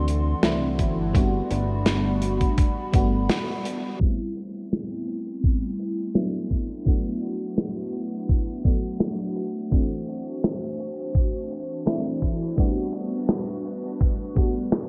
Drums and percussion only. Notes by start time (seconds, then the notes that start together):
0.08 closed hi-hat
0.43 snare, closed hi-hat
0.79 kick, closed hi-hat
1.15 kick, closed hi-hat
1.51 closed hi-hat
1.86 snare, closed hi-hat
2.22 closed hi-hat
2.41 kick, closed hi-hat
2.58 kick, closed hi-hat
2.93 kick, closed hi-hat
3.29 snare, closed hi-hat
3.65 closed hi-hat
4.01 kick, closed hi-hat
4.37 closed hi-hat
4.72 snare, closed hi-hat
5.08 closed hi-hat
5.27 closed hi-hat
5.44 kick, closed hi-hat
5.79 closed hi-hat
6.15 snare, closed hi-hat
6.51 kick, closed hi-hat
6.86 kick, closed hi-hat
7.22 closed hi-hat
7.58 snare, closed hi-hat
7.93 closed hi-hat
8.12 closed hi-hat
8.29 kick, closed hi-hat
8.64 kick, closed hi-hat
9.00 snare, closed hi-hat
9.36 closed hi-hat
9.72 kick, closed hi-hat
10.08 closed hi-hat
10.44 snare, closed hi-hat
10.79 closed hi-hat
10.98 closed hi-hat
11.15 kick, closed hi-hat
11.50 closed hi-hat
11.86 snare, closed hi-hat
12.22 kick, closed hi-hat
12.58 kick, closed hi-hat
12.93 closed hi-hat
13.29 snare, closed hi-hat
13.65 closed hi-hat
13.84 closed hi-hat
14.01 kick, closed hi-hat
14.36 kick, closed hi-hat
14.72 snare, closed hi-hat